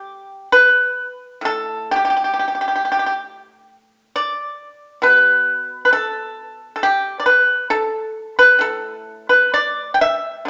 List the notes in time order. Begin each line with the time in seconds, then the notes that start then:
Already playing: B2 G3 G4
0.52 B4
1.41 A2 A4
1.91 G4
1.96 G4
2.05 G4
2.10 G4
2.17 G4
2.24 G4
2.34 G4
2.39 G4
2.48 G4
2.55 G4
2.61 G4
2.68 G4
2.76 G4
2.85 G4
2.92 G4
2.99 G4
3.06 G4
4.16 D5
5.02 B2 B4
5.85 B4
5.93 A4
6.76 A4
6.83 G4
7.20 D5
7.26 B4
7.70 A4
8.39 B4
8.59 A2 A4
9.29 B4
9.54 D5
9.94 G5
10.01 E5
10.45 D3